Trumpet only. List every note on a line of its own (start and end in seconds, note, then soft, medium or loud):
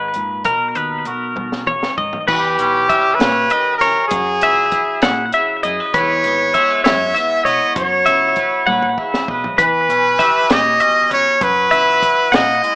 2.29 3.16 G4 medium
3.15 3.77 B4 loud
3.78 4.07 A#4 medium
4.08 5.28 G#4 medium
5.94 6.82 C#5 medium
6.84 7.46 E5 loud
7.44 7.75 D#5 medium
7.76 8.94 C#5 medium
9.61 10.54 B4 loud
10.52 11.12 D#5 loud
11.13 11.44 C#5 loud
11.43 12.37 B4 loud
12.35 12.75 D#5 loud